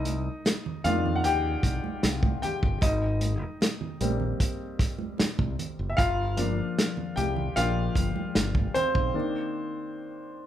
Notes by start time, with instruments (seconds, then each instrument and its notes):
Already playing: fingered electric bass C2, grand piano D#4 D#5
0.05 closed hi-hat, muted conga, high conga
0.45 snare, closed hi-hat, muted conga
0.66 low conga
0.84 fingered electric bass F2, grand piano D#3 A#3 D4 F4 F5, closed hi-hat, muted conga, high conga
1.06 low conga
1.16 grand piano F#5
1.24 fingered electric bass D#2, grand piano G4 G5, closed hi-hat
1.63 fingered electric bass C2, kick, closed hi-hat, muted conga
1.84 high conga
2.03 fingered electric bass C2, snare, closed hi-hat
2.23 kick, high conga
2.42 grand piano G4 G5, closed hi-hat, muted conga, low conga
2.63 fingered electric bass G1, kick
2.81 fingered electric bass G#1, grand piano D#4 D#5, kick, closed hi-hat, muted conga
3.21 closed hi-hat, high conga
3.61 snare, closed hi-hat, muted conga
3.81 low conga
4.01 fingered electric bass A#1, grand piano G3 A#3 C4, closed hi-hat, muted conga, high conga
4.20 low conga
4.40 kick, closed hi-hat
4.79 kick, snare, closed hi-hat
4.99 high conga
5.18 muted fingered electric bass stroke, snare, closed hi-hat, muted conga
5.38 fingered electric bass C2, kick, high conga
5.59 closed hi-hat, muted conga, low conga
5.79 fingered electric bass F#1
5.90 grand piano E5
5.97 fingered electric bass G1, grand piano F4 F5, kick, closed hi-hat
6.37 grand piano F3 A#3 D4, closed hi-hat, muted conga, high conga
6.79 snare, closed hi-hat
6.97 low conga
7.16 fingered electric bass C2, grand piano G4 G5, closed hi-hat, high conga
7.36 low conga
7.56 fingered electric bass A#1, grand piano F3 A#3 D4 F4 F5, closed hi-hat
7.95 fingered electric bass G1, kick, closed hi-hat, muted conga
8.16 high conga
8.35 fingered electric bass G1, snare, closed hi-hat, muted conga
8.55 kick, high conga
8.74 grand piano C4 C5, closed hi-hat, muted conga, low conga
8.95 fingered electric bass B1, kick
9.14 grand piano D#3 A#3 D4